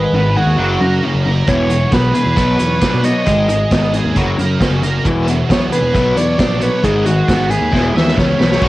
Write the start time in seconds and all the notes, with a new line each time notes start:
Already playing: G#2 D#3 G#3 B4
0.13 G#1 G#2 D#3 B3
0.36 G#2 D#3 F#4 G#4
0.46 D#2
0.57 F#1 F#2 C#3 F#3
0.80 F#2 C#3 A#4
1.02 F#2 C#3 C#4
1.15 F#1
1.25 F#2 C#3 A#4
1.47 E1 E2 B2 E3 C#5, kick, closed hi-hat
1.69 E2 B2 F#3, closed hi-hat
1.91 B1 E2 B2 B3 B4, kick, snare, closed hi-hat
2.14 E2 B2 G#4 B4, closed hi-hat
2.26 E2
2.35 B1 B2 F#3 B3, kick, closed hi-hat
2.58 E2 B2 F#3 C#5, closed hi-hat
2.80 B2 F#3 D4, kick, snare, closed hi-hat
2.94 B2
3.03 B2 F#3 C#5 D#5, closed hi-hat
3.25 G#1 G#2 D#3 G#3, kick, closed hi-hat
3.48 G#2 D#3 G#3, closed hi-hat
3.70 G#1 G#2 D#3 B3, kick, snare, closed hi-hat
3.93 G#2 D#3 G#4, closed hi-hat
4.05 D#2
4.15 F#1 F#2 C#3 F#3, kick, closed hi-hat
4.38 F#2 C#3 A#4, closed hi-hat
4.60 F#2 C#3 C#4, kick, snare, closed hi-hat
4.71 F#1
4.82 F#2 C#3 A#4, closed hi-hat
5.04 E1 E2 B2 E3, kick, closed hi-hat
5.27 E2 B2 F#3, closed hi-hat
5.49 B1 E2 B2 B3 C#5, kick, snare, closed hi-hat
5.72 E2 B2 G#4 B4, closed hi-hat
5.82 E2
5.93 B1 B2 F#3 B3, kick, closed hi-hat
6.16 E2 B2 F#3 C#5 D5, closed hi-hat
6.38 B2 F#3 D4, kick, snare, closed hi-hat
6.49 A#1
6.60 B2 F#3 B4 C#5, closed hi-hat
6.83 G#1 G#2 D#3 G#3 G#4, kick, closed hi-hat
7.05 G#2 D#3 G#3 F#4, closed hi-hat
7.28 G#1 G#2 D#3 B3, kick, snare, closed hi-hat
7.49 G#2 D#3 G#4 B4, closed hi-hat
7.61 D#2
7.71 E1 E2 E3 G#3, kick, snare
7.94 D#2 E2 E3 B4 E5, snare
8.08 snare
8.16 C#2 E2 E3 C#4 C#5, kick, snare
8.38 B1 E2 E3 B4, snare
8.52 snare
8.60 B1 B2 F#3 B3 D#4 F#4 C#5, kick, crash